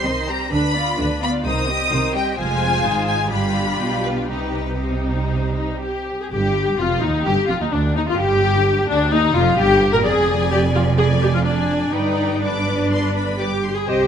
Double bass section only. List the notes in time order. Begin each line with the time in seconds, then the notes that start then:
0.05 C2
0.53 D2
0.99 D2
1.45 C2
1.92 C2
2.39 F1
2.85 G#1
3.31 G1
3.80 B1
4.30 C2
6.31 G1
6.79 F1
7.03 D#2
7.26 G1
7.49 F1
7.73 D2
7.95 D#2
8.19 G1
8.89 D2
9.12 D#2
9.35 F1
9.58 G1
10.05 F1
11.93 G1
13.87 C2